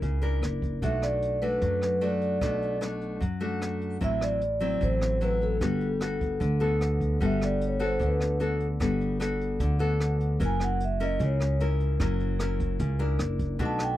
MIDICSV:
0, 0, Header, 1, 5, 480
1, 0, Start_track
1, 0, Key_signature, 1, "major"
1, 0, Tempo, 399202
1, 980, Time_signature, 4, 2, 24, 8
1, 16798, End_track
2, 0, Start_track
2, 0, Title_t, "Vibraphone"
2, 0, Program_c, 0, 11
2, 1006, Note_on_c, 0, 76, 84
2, 1237, Note_on_c, 0, 74, 84
2, 1240, Note_off_c, 0, 76, 0
2, 1677, Note_off_c, 0, 74, 0
2, 1705, Note_on_c, 0, 71, 79
2, 2184, Note_off_c, 0, 71, 0
2, 2199, Note_on_c, 0, 71, 74
2, 2430, Note_on_c, 0, 74, 75
2, 2437, Note_off_c, 0, 71, 0
2, 2654, Note_off_c, 0, 74, 0
2, 2668, Note_on_c, 0, 74, 66
2, 3338, Note_off_c, 0, 74, 0
2, 4859, Note_on_c, 0, 76, 93
2, 5066, Note_off_c, 0, 76, 0
2, 5084, Note_on_c, 0, 74, 94
2, 5811, Note_on_c, 0, 72, 90
2, 5816, Note_off_c, 0, 74, 0
2, 6245, Note_off_c, 0, 72, 0
2, 6288, Note_on_c, 0, 71, 87
2, 6523, Note_off_c, 0, 71, 0
2, 6531, Note_on_c, 0, 69, 70
2, 8150, Note_off_c, 0, 69, 0
2, 8722, Note_on_c, 0, 76, 68
2, 8927, Note_off_c, 0, 76, 0
2, 8945, Note_on_c, 0, 74, 74
2, 9158, Note_off_c, 0, 74, 0
2, 9225, Note_on_c, 0, 73, 60
2, 9418, Note_off_c, 0, 73, 0
2, 9430, Note_on_c, 0, 72, 75
2, 9640, Note_off_c, 0, 72, 0
2, 9693, Note_on_c, 0, 71, 66
2, 10107, Note_off_c, 0, 71, 0
2, 12569, Note_on_c, 0, 80, 85
2, 12768, Note_off_c, 0, 80, 0
2, 12785, Note_on_c, 0, 78, 74
2, 12996, Note_off_c, 0, 78, 0
2, 13037, Note_on_c, 0, 76, 70
2, 13242, Note_off_c, 0, 76, 0
2, 13258, Note_on_c, 0, 75, 77
2, 13472, Note_off_c, 0, 75, 0
2, 13523, Note_on_c, 0, 73, 60
2, 13939, Note_off_c, 0, 73, 0
2, 16419, Note_on_c, 0, 81, 79
2, 16611, Note_off_c, 0, 81, 0
2, 16633, Note_on_c, 0, 79, 83
2, 16798, Note_off_c, 0, 79, 0
2, 16798, End_track
3, 0, Start_track
3, 0, Title_t, "Nylon-string guitar"
3, 0, Program_c, 1, 24
3, 0, Note_on_c, 1, 61, 45
3, 0, Note_on_c, 1, 64, 45
3, 0, Note_on_c, 1, 70, 49
3, 25, Note_on_c, 1, 49, 50
3, 227, Note_off_c, 1, 61, 0
3, 227, Note_off_c, 1, 64, 0
3, 233, Note_off_c, 1, 70, 0
3, 261, Note_on_c, 1, 62, 53
3, 269, Note_on_c, 1, 64, 55
3, 272, Note_on_c, 1, 70, 58
3, 479, Note_off_c, 1, 49, 0
3, 942, Note_off_c, 1, 62, 0
3, 947, Note_off_c, 1, 64, 0
3, 947, Note_off_c, 1, 70, 0
3, 987, Note_on_c, 1, 47, 47
3, 990, Note_on_c, 1, 57, 46
3, 991, Note_on_c, 1, 62, 46
3, 996, Note_on_c, 1, 66, 52
3, 1665, Note_off_c, 1, 57, 0
3, 1668, Note_off_c, 1, 62, 0
3, 1670, Note_off_c, 1, 66, 0
3, 1708, Note_on_c, 1, 57, 53
3, 1713, Note_on_c, 1, 62, 57
3, 1716, Note_on_c, 1, 66, 65
3, 1921, Note_off_c, 1, 47, 0
3, 1942, Note_on_c, 1, 54, 50
3, 2387, Note_off_c, 1, 57, 0
3, 2390, Note_off_c, 1, 62, 0
3, 2390, Note_off_c, 1, 66, 0
3, 2419, Note_on_c, 1, 57, 48
3, 2426, Note_on_c, 1, 62, 46
3, 2430, Note_on_c, 1, 66, 46
3, 2863, Note_off_c, 1, 57, 0
3, 2866, Note_off_c, 1, 62, 0
3, 2867, Note_off_c, 1, 66, 0
3, 2879, Note_off_c, 1, 54, 0
3, 2900, Note_on_c, 1, 47, 50
3, 2903, Note_on_c, 1, 57, 46
3, 2913, Note_on_c, 1, 62, 49
3, 2913, Note_on_c, 1, 66, 56
3, 3344, Note_off_c, 1, 57, 0
3, 3346, Note_off_c, 1, 62, 0
3, 3350, Note_off_c, 1, 66, 0
3, 3378, Note_on_c, 1, 57, 44
3, 3381, Note_on_c, 1, 62, 45
3, 3383, Note_on_c, 1, 66, 46
3, 3839, Note_off_c, 1, 47, 0
3, 3854, Note_on_c, 1, 54, 52
3, 3858, Note_off_c, 1, 57, 0
3, 3859, Note_off_c, 1, 62, 0
3, 3861, Note_off_c, 1, 66, 0
3, 4095, Note_on_c, 1, 57, 51
3, 4100, Note_on_c, 1, 62, 54
3, 4102, Note_on_c, 1, 66, 57
3, 4781, Note_off_c, 1, 57, 0
3, 4784, Note_off_c, 1, 62, 0
3, 4784, Note_off_c, 1, 66, 0
3, 4795, Note_off_c, 1, 54, 0
3, 4817, Note_on_c, 1, 45, 52
3, 4818, Note_on_c, 1, 54, 52
3, 4823, Note_on_c, 1, 60, 48
3, 4830, Note_on_c, 1, 64, 55
3, 5298, Note_off_c, 1, 54, 0
3, 5302, Note_off_c, 1, 60, 0
3, 5303, Note_off_c, 1, 64, 0
3, 5537, Note_on_c, 1, 54, 57
3, 5544, Note_on_c, 1, 60, 58
3, 5551, Note_on_c, 1, 64, 70
3, 5757, Note_off_c, 1, 45, 0
3, 5780, Note_on_c, 1, 45, 52
3, 6222, Note_off_c, 1, 54, 0
3, 6226, Note_off_c, 1, 60, 0
3, 6229, Note_off_c, 1, 64, 0
3, 6264, Note_on_c, 1, 54, 47
3, 6271, Note_on_c, 1, 60, 44
3, 6280, Note_on_c, 1, 64, 52
3, 6706, Note_off_c, 1, 54, 0
3, 6710, Note_off_c, 1, 60, 0
3, 6712, Note_off_c, 1, 64, 0
3, 6718, Note_off_c, 1, 45, 0
3, 6743, Note_on_c, 1, 55, 51
3, 6748, Note_on_c, 1, 59, 50
3, 6751, Note_on_c, 1, 66, 56
3, 6759, Note_on_c, 1, 69, 56
3, 7055, Note_off_c, 1, 59, 0
3, 7057, Note_off_c, 1, 66, 0
3, 7059, Note_off_c, 1, 69, 0
3, 7225, Note_on_c, 1, 59, 53
3, 7235, Note_on_c, 1, 66, 44
3, 7239, Note_on_c, 1, 69, 49
3, 7680, Note_off_c, 1, 55, 0
3, 7696, Note_on_c, 1, 50, 52
3, 7702, Note_off_c, 1, 59, 0
3, 7707, Note_off_c, 1, 66, 0
3, 7708, Note_off_c, 1, 69, 0
3, 7937, Note_on_c, 1, 59, 57
3, 7944, Note_on_c, 1, 66, 53
3, 7945, Note_on_c, 1, 69, 57
3, 8622, Note_off_c, 1, 59, 0
3, 8625, Note_off_c, 1, 69, 0
3, 8626, Note_off_c, 1, 66, 0
3, 8636, Note_off_c, 1, 50, 0
3, 8663, Note_on_c, 1, 55, 53
3, 8669, Note_on_c, 1, 59, 53
3, 8675, Note_on_c, 1, 66, 52
3, 8677, Note_on_c, 1, 69, 55
3, 9347, Note_off_c, 1, 59, 0
3, 9348, Note_off_c, 1, 66, 0
3, 9352, Note_off_c, 1, 69, 0
3, 9374, Note_on_c, 1, 59, 60
3, 9378, Note_on_c, 1, 66, 59
3, 9380, Note_on_c, 1, 69, 69
3, 9600, Note_off_c, 1, 55, 0
3, 9611, Note_on_c, 1, 50, 50
3, 10060, Note_off_c, 1, 59, 0
3, 10061, Note_off_c, 1, 66, 0
3, 10063, Note_off_c, 1, 69, 0
3, 10099, Note_on_c, 1, 59, 50
3, 10106, Note_on_c, 1, 66, 51
3, 10110, Note_on_c, 1, 69, 55
3, 10410, Note_off_c, 1, 59, 0
3, 10414, Note_off_c, 1, 66, 0
3, 10414, Note_off_c, 1, 69, 0
3, 10552, Note_off_c, 1, 50, 0
3, 10579, Note_on_c, 1, 55, 55
3, 10584, Note_on_c, 1, 59, 53
3, 10586, Note_on_c, 1, 66, 51
3, 10594, Note_on_c, 1, 69, 58
3, 11023, Note_off_c, 1, 59, 0
3, 11026, Note_off_c, 1, 66, 0
3, 11030, Note_off_c, 1, 69, 0
3, 11058, Note_on_c, 1, 59, 51
3, 11066, Note_on_c, 1, 66, 47
3, 11067, Note_on_c, 1, 69, 51
3, 11516, Note_off_c, 1, 55, 0
3, 11544, Note_on_c, 1, 50, 55
3, 11741, Note_off_c, 1, 59, 0
3, 11743, Note_off_c, 1, 66, 0
3, 11745, Note_off_c, 1, 69, 0
3, 11775, Note_on_c, 1, 59, 57
3, 11785, Note_on_c, 1, 66, 56
3, 11785, Note_on_c, 1, 69, 62
3, 12460, Note_off_c, 1, 59, 0
3, 12462, Note_off_c, 1, 66, 0
3, 12464, Note_off_c, 1, 69, 0
3, 12478, Note_off_c, 1, 50, 0
3, 12501, Note_on_c, 1, 54, 52
3, 12506, Note_on_c, 1, 61, 52
3, 12508, Note_on_c, 1, 64, 52
3, 12515, Note_on_c, 1, 70, 58
3, 12979, Note_off_c, 1, 61, 0
3, 12981, Note_off_c, 1, 64, 0
3, 12983, Note_off_c, 1, 70, 0
3, 13228, Note_on_c, 1, 61, 61
3, 13233, Note_on_c, 1, 64, 55
3, 13236, Note_on_c, 1, 70, 62
3, 13436, Note_off_c, 1, 54, 0
3, 13461, Note_on_c, 1, 49, 53
3, 13905, Note_off_c, 1, 61, 0
3, 13907, Note_off_c, 1, 64, 0
3, 13908, Note_off_c, 1, 70, 0
3, 13952, Note_on_c, 1, 61, 49
3, 13957, Note_on_c, 1, 64, 51
3, 13963, Note_on_c, 1, 70, 53
3, 14386, Note_off_c, 1, 61, 0
3, 14389, Note_off_c, 1, 64, 0
3, 14391, Note_off_c, 1, 70, 0
3, 14395, Note_off_c, 1, 49, 0
3, 14426, Note_on_c, 1, 61, 53
3, 14431, Note_on_c, 1, 54, 54
3, 14434, Note_on_c, 1, 64, 53
3, 14439, Note_on_c, 1, 70, 55
3, 14863, Note_off_c, 1, 61, 0
3, 14865, Note_off_c, 1, 64, 0
3, 14870, Note_off_c, 1, 70, 0
3, 14909, Note_on_c, 1, 61, 50
3, 14919, Note_on_c, 1, 64, 51
3, 14922, Note_on_c, 1, 70, 48
3, 15359, Note_off_c, 1, 54, 0
3, 15387, Note_on_c, 1, 49, 54
3, 15584, Note_off_c, 1, 61, 0
3, 15589, Note_off_c, 1, 64, 0
3, 15590, Note_off_c, 1, 70, 0
3, 15621, Note_on_c, 1, 62, 58
3, 15629, Note_on_c, 1, 70, 56
3, 15630, Note_on_c, 1, 64, 59
3, 15837, Note_off_c, 1, 49, 0
3, 16300, Note_off_c, 1, 62, 0
3, 16302, Note_off_c, 1, 64, 0
3, 16303, Note_off_c, 1, 70, 0
3, 16341, Note_on_c, 1, 47, 56
3, 16344, Note_on_c, 1, 57, 55
3, 16349, Note_on_c, 1, 62, 50
3, 16351, Note_on_c, 1, 66, 57
3, 16798, Note_off_c, 1, 47, 0
3, 16798, Note_off_c, 1, 57, 0
3, 16798, Note_off_c, 1, 62, 0
3, 16798, Note_off_c, 1, 66, 0
3, 16798, End_track
4, 0, Start_track
4, 0, Title_t, "Upright bass"
4, 0, Program_c, 2, 32
4, 30, Note_on_c, 2, 37, 80
4, 472, Note_off_c, 2, 37, 0
4, 502, Note_on_c, 2, 30, 76
4, 948, Note_off_c, 2, 30, 0
4, 984, Note_on_c, 2, 35, 72
4, 1895, Note_off_c, 2, 35, 0
4, 1945, Note_on_c, 2, 42, 86
4, 2856, Note_off_c, 2, 42, 0
4, 2902, Note_on_c, 2, 35, 73
4, 3815, Note_off_c, 2, 35, 0
4, 3864, Note_on_c, 2, 42, 83
4, 4776, Note_off_c, 2, 42, 0
4, 4826, Note_on_c, 2, 33, 74
4, 5737, Note_off_c, 2, 33, 0
4, 5786, Note_on_c, 2, 33, 84
4, 6697, Note_off_c, 2, 33, 0
4, 6744, Note_on_c, 2, 31, 81
4, 7656, Note_off_c, 2, 31, 0
4, 7706, Note_on_c, 2, 38, 94
4, 8617, Note_off_c, 2, 38, 0
4, 8671, Note_on_c, 2, 31, 81
4, 9579, Note_off_c, 2, 31, 0
4, 9621, Note_on_c, 2, 38, 84
4, 10533, Note_off_c, 2, 38, 0
4, 10586, Note_on_c, 2, 31, 82
4, 11496, Note_off_c, 2, 31, 0
4, 11543, Note_on_c, 2, 38, 96
4, 12453, Note_off_c, 2, 38, 0
4, 12511, Note_on_c, 2, 30, 87
4, 13417, Note_off_c, 2, 30, 0
4, 13469, Note_on_c, 2, 37, 99
4, 14375, Note_off_c, 2, 37, 0
4, 14428, Note_on_c, 2, 30, 82
4, 15334, Note_off_c, 2, 30, 0
4, 15390, Note_on_c, 2, 37, 98
4, 15829, Note_off_c, 2, 37, 0
4, 15866, Note_on_c, 2, 30, 90
4, 16307, Note_off_c, 2, 30, 0
4, 16344, Note_on_c, 2, 35, 90
4, 16798, Note_off_c, 2, 35, 0
4, 16798, End_track
5, 0, Start_track
5, 0, Title_t, "Drums"
5, 25, Note_on_c, 9, 36, 52
5, 28, Note_on_c, 9, 42, 34
5, 146, Note_off_c, 9, 36, 0
5, 149, Note_off_c, 9, 42, 0
5, 265, Note_on_c, 9, 42, 22
5, 385, Note_off_c, 9, 42, 0
5, 510, Note_on_c, 9, 37, 48
5, 510, Note_on_c, 9, 42, 34
5, 630, Note_off_c, 9, 37, 0
5, 630, Note_off_c, 9, 42, 0
5, 747, Note_on_c, 9, 36, 45
5, 755, Note_on_c, 9, 42, 22
5, 868, Note_off_c, 9, 36, 0
5, 875, Note_off_c, 9, 42, 0
5, 987, Note_on_c, 9, 36, 48
5, 991, Note_on_c, 9, 42, 36
5, 1107, Note_off_c, 9, 36, 0
5, 1111, Note_off_c, 9, 42, 0
5, 1226, Note_on_c, 9, 37, 47
5, 1226, Note_on_c, 9, 42, 20
5, 1346, Note_off_c, 9, 37, 0
5, 1346, Note_off_c, 9, 42, 0
5, 1469, Note_on_c, 9, 42, 36
5, 1589, Note_off_c, 9, 42, 0
5, 1709, Note_on_c, 9, 42, 20
5, 1829, Note_off_c, 9, 42, 0
5, 1939, Note_on_c, 9, 42, 35
5, 1944, Note_on_c, 9, 36, 50
5, 2059, Note_off_c, 9, 42, 0
5, 2064, Note_off_c, 9, 36, 0
5, 2183, Note_on_c, 9, 37, 50
5, 2183, Note_on_c, 9, 42, 23
5, 2303, Note_off_c, 9, 37, 0
5, 2303, Note_off_c, 9, 42, 0
5, 2418, Note_on_c, 9, 42, 38
5, 2538, Note_off_c, 9, 42, 0
5, 2658, Note_on_c, 9, 42, 23
5, 2778, Note_off_c, 9, 42, 0
5, 2901, Note_on_c, 9, 37, 50
5, 2901, Note_on_c, 9, 42, 38
5, 2903, Note_on_c, 9, 36, 50
5, 3022, Note_off_c, 9, 37, 0
5, 3022, Note_off_c, 9, 42, 0
5, 3023, Note_off_c, 9, 36, 0
5, 3149, Note_on_c, 9, 42, 23
5, 3270, Note_off_c, 9, 42, 0
5, 3384, Note_on_c, 9, 37, 52
5, 3384, Note_on_c, 9, 42, 40
5, 3504, Note_off_c, 9, 37, 0
5, 3504, Note_off_c, 9, 42, 0
5, 3621, Note_on_c, 9, 42, 23
5, 3741, Note_off_c, 9, 42, 0
5, 3864, Note_on_c, 9, 42, 37
5, 3865, Note_on_c, 9, 36, 51
5, 3984, Note_off_c, 9, 42, 0
5, 3986, Note_off_c, 9, 36, 0
5, 4111, Note_on_c, 9, 42, 24
5, 4231, Note_off_c, 9, 42, 0
5, 4345, Note_on_c, 9, 37, 50
5, 4345, Note_on_c, 9, 42, 39
5, 4465, Note_off_c, 9, 37, 0
5, 4465, Note_off_c, 9, 42, 0
5, 4584, Note_on_c, 9, 42, 23
5, 4704, Note_off_c, 9, 42, 0
5, 4825, Note_on_c, 9, 36, 47
5, 4828, Note_on_c, 9, 42, 38
5, 4945, Note_off_c, 9, 36, 0
5, 4948, Note_off_c, 9, 42, 0
5, 5062, Note_on_c, 9, 37, 52
5, 5062, Note_on_c, 9, 42, 22
5, 5182, Note_off_c, 9, 37, 0
5, 5182, Note_off_c, 9, 42, 0
5, 5303, Note_on_c, 9, 42, 39
5, 5423, Note_off_c, 9, 42, 0
5, 5542, Note_on_c, 9, 42, 22
5, 5663, Note_off_c, 9, 42, 0
5, 5784, Note_on_c, 9, 36, 56
5, 5785, Note_on_c, 9, 42, 38
5, 5904, Note_off_c, 9, 36, 0
5, 5905, Note_off_c, 9, 42, 0
5, 6026, Note_on_c, 9, 37, 54
5, 6026, Note_on_c, 9, 42, 24
5, 6146, Note_off_c, 9, 37, 0
5, 6146, Note_off_c, 9, 42, 0
5, 6265, Note_on_c, 9, 42, 37
5, 6386, Note_off_c, 9, 42, 0
5, 6508, Note_on_c, 9, 42, 23
5, 6629, Note_off_c, 9, 42, 0
5, 6744, Note_on_c, 9, 36, 54
5, 6745, Note_on_c, 9, 37, 49
5, 6745, Note_on_c, 9, 42, 38
5, 6865, Note_off_c, 9, 36, 0
5, 6865, Note_off_c, 9, 37, 0
5, 6865, Note_off_c, 9, 42, 0
5, 6979, Note_on_c, 9, 42, 24
5, 7099, Note_off_c, 9, 42, 0
5, 7221, Note_on_c, 9, 37, 56
5, 7221, Note_on_c, 9, 42, 43
5, 7341, Note_off_c, 9, 37, 0
5, 7341, Note_off_c, 9, 42, 0
5, 7463, Note_on_c, 9, 42, 23
5, 7466, Note_on_c, 9, 36, 47
5, 7584, Note_off_c, 9, 42, 0
5, 7586, Note_off_c, 9, 36, 0
5, 7704, Note_on_c, 9, 42, 42
5, 7705, Note_on_c, 9, 36, 52
5, 7824, Note_off_c, 9, 42, 0
5, 7825, Note_off_c, 9, 36, 0
5, 7947, Note_on_c, 9, 42, 26
5, 8067, Note_off_c, 9, 42, 0
5, 8186, Note_on_c, 9, 37, 51
5, 8186, Note_on_c, 9, 42, 38
5, 8306, Note_off_c, 9, 37, 0
5, 8306, Note_off_c, 9, 42, 0
5, 8426, Note_on_c, 9, 36, 52
5, 8429, Note_on_c, 9, 42, 26
5, 8546, Note_off_c, 9, 36, 0
5, 8550, Note_off_c, 9, 42, 0
5, 8667, Note_on_c, 9, 36, 54
5, 8671, Note_on_c, 9, 42, 38
5, 8787, Note_off_c, 9, 36, 0
5, 8791, Note_off_c, 9, 42, 0
5, 8912, Note_on_c, 9, 37, 51
5, 8912, Note_on_c, 9, 42, 23
5, 9032, Note_off_c, 9, 37, 0
5, 9032, Note_off_c, 9, 42, 0
5, 9151, Note_on_c, 9, 42, 42
5, 9271, Note_off_c, 9, 42, 0
5, 9385, Note_on_c, 9, 42, 24
5, 9505, Note_off_c, 9, 42, 0
5, 9623, Note_on_c, 9, 36, 55
5, 9625, Note_on_c, 9, 42, 38
5, 9743, Note_off_c, 9, 36, 0
5, 9745, Note_off_c, 9, 42, 0
5, 9864, Note_on_c, 9, 37, 54
5, 9864, Note_on_c, 9, 42, 25
5, 9984, Note_off_c, 9, 37, 0
5, 9984, Note_off_c, 9, 42, 0
5, 10105, Note_on_c, 9, 42, 38
5, 10226, Note_off_c, 9, 42, 0
5, 10342, Note_on_c, 9, 42, 24
5, 10462, Note_off_c, 9, 42, 0
5, 10583, Note_on_c, 9, 36, 55
5, 10587, Note_on_c, 9, 37, 55
5, 10587, Note_on_c, 9, 42, 42
5, 10703, Note_off_c, 9, 36, 0
5, 10708, Note_off_c, 9, 37, 0
5, 10708, Note_off_c, 9, 42, 0
5, 10830, Note_on_c, 9, 42, 25
5, 10950, Note_off_c, 9, 42, 0
5, 11069, Note_on_c, 9, 37, 59
5, 11069, Note_on_c, 9, 42, 45
5, 11189, Note_off_c, 9, 37, 0
5, 11189, Note_off_c, 9, 42, 0
5, 11311, Note_on_c, 9, 42, 25
5, 11432, Note_off_c, 9, 42, 0
5, 11542, Note_on_c, 9, 42, 43
5, 11544, Note_on_c, 9, 36, 52
5, 11662, Note_off_c, 9, 42, 0
5, 11665, Note_off_c, 9, 36, 0
5, 11794, Note_on_c, 9, 42, 26
5, 11914, Note_off_c, 9, 42, 0
5, 12026, Note_on_c, 9, 37, 53
5, 12026, Note_on_c, 9, 42, 38
5, 12146, Note_off_c, 9, 37, 0
5, 12146, Note_off_c, 9, 42, 0
5, 12267, Note_on_c, 9, 42, 26
5, 12387, Note_off_c, 9, 42, 0
5, 12507, Note_on_c, 9, 36, 60
5, 12511, Note_on_c, 9, 42, 40
5, 12627, Note_off_c, 9, 36, 0
5, 12631, Note_off_c, 9, 42, 0
5, 12743, Note_on_c, 9, 37, 55
5, 12743, Note_on_c, 9, 42, 25
5, 12864, Note_off_c, 9, 37, 0
5, 12864, Note_off_c, 9, 42, 0
5, 12985, Note_on_c, 9, 42, 39
5, 13105, Note_off_c, 9, 42, 0
5, 13228, Note_on_c, 9, 42, 23
5, 13348, Note_off_c, 9, 42, 0
5, 13466, Note_on_c, 9, 42, 37
5, 13469, Note_on_c, 9, 36, 59
5, 13586, Note_off_c, 9, 42, 0
5, 13589, Note_off_c, 9, 36, 0
5, 13710, Note_on_c, 9, 37, 61
5, 13710, Note_on_c, 9, 42, 24
5, 13830, Note_off_c, 9, 37, 0
5, 13830, Note_off_c, 9, 42, 0
5, 13947, Note_on_c, 9, 42, 39
5, 14067, Note_off_c, 9, 42, 0
5, 14187, Note_on_c, 9, 42, 24
5, 14307, Note_off_c, 9, 42, 0
5, 14426, Note_on_c, 9, 37, 57
5, 14426, Note_on_c, 9, 42, 40
5, 14428, Note_on_c, 9, 36, 57
5, 14546, Note_off_c, 9, 37, 0
5, 14546, Note_off_c, 9, 42, 0
5, 14549, Note_off_c, 9, 36, 0
5, 14666, Note_on_c, 9, 42, 26
5, 14786, Note_off_c, 9, 42, 0
5, 14902, Note_on_c, 9, 37, 63
5, 14902, Note_on_c, 9, 42, 47
5, 15022, Note_off_c, 9, 37, 0
5, 15022, Note_off_c, 9, 42, 0
5, 15146, Note_on_c, 9, 42, 26
5, 15148, Note_on_c, 9, 36, 49
5, 15266, Note_off_c, 9, 42, 0
5, 15269, Note_off_c, 9, 36, 0
5, 15379, Note_on_c, 9, 42, 42
5, 15387, Note_on_c, 9, 36, 51
5, 15500, Note_off_c, 9, 42, 0
5, 15507, Note_off_c, 9, 36, 0
5, 15623, Note_on_c, 9, 42, 27
5, 15743, Note_off_c, 9, 42, 0
5, 15859, Note_on_c, 9, 37, 60
5, 15859, Note_on_c, 9, 42, 43
5, 15980, Note_off_c, 9, 37, 0
5, 15980, Note_off_c, 9, 42, 0
5, 16100, Note_on_c, 9, 42, 28
5, 16105, Note_on_c, 9, 36, 52
5, 16220, Note_off_c, 9, 42, 0
5, 16225, Note_off_c, 9, 36, 0
5, 16337, Note_on_c, 9, 42, 42
5, 16345, Note_on_c, 9, 36, 56
5, 16458, Note_off_c, 9, 42, 0
5, 16466, Note_off_c, 9, 36, 0
5, 16577, Note_on_c, 9, 37, 57
5, 16577, Note_on_c, 9, 42, 26
5, 16698, Note_off_c, 9, 37, 0
5, 16698, Note_off_c, 9, 42, 0
5, 16798, End_track
0, 0, End_of_file